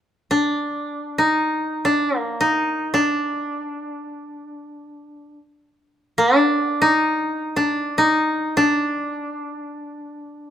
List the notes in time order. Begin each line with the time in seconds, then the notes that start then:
0.31 D4
1.18 D#4
1.85 D4
2.19 A#3
2.41 D#4
2.94 D4
6.18 D4
6.82 D#4
7.56 D4
7.98 D#4
8.57 D4